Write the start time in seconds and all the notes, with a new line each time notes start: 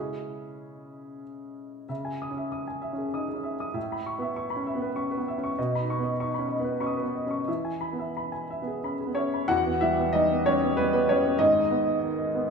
Already playing: C#3 G#3 C#4 E4 G#4
1.89 C#3 E5
2.05 G#5
2.22 D#6
2.31 C#4
2.37 E5
2.52 D#6
2.67 G#5
2.82 E5
2.93 C#4
2.98 G#4
3.14 D#4 D#6
3.29 G#4
3.34 C#4
3.44 E5
3.60 D#6
3.74 A2 E5
3.92 B5
4.06 C#6
4.19 B3 E5
4.36 C#6
4.50 B5
4.56 C#4
4.67 E5
4.75 B3
4.82 B4
4.96 C#4 C#6
5.11 B4
5.17 B3
5.28 E5
5.38 C#4
5.44 C#6
5.59 B2 D#5
5.75 B5
5.81 D#4
5.90 C#6
5.98 B3
6.03 D#5
6.20 D#4 C#6
6.34 B5
6.38 C#4
6.48 D#5
6.59 B3
6.64 B4
6.80 C#4 B5 C#6
6.86 D#6
6.96 B4
7.03 B3
7.15 D#5
7.27 C#4
7.31 C#6
7.48 E3 E5
7.65 G#5
7.81 B5
7.93 B3
7.99 E5
8.17 B5
8.32 G#5
8.50 E5
8.62 B3
8.67 G#4
8.84 C#4 B5
9.00 G#4
9.06 B3
9.15 C#4 C#5 E5
9.34 B5
9.48 E2 E3 F#4 F#5
9.66 B3
9.81 G3 E4 E5
9.99 B3
10.13 G3 D#4 D#5
10.32 B3
10.46 G3 C#4 C#5
10.63 B3
10.77 G3 B3 B4
10.93 B3 B4
11.09 G3 C#4 C#5
11.25 B3
11.39 G#1 G#2 D#4 D#5
11.58 G#3
11.71 B3
11.87 G#3
12.03 D#3
12.19 G#3
12.35 B3